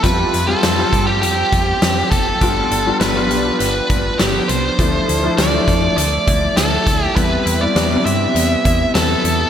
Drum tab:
HH |xxxxxxxx|xxxxxxxx|xxxxxxxx|xxxxxxxx|
SD |--o---o-|--o---o-|--o---o-|--o---o-|
BD |o--o-o-o|o----o--|o--o-o-o|o----o--|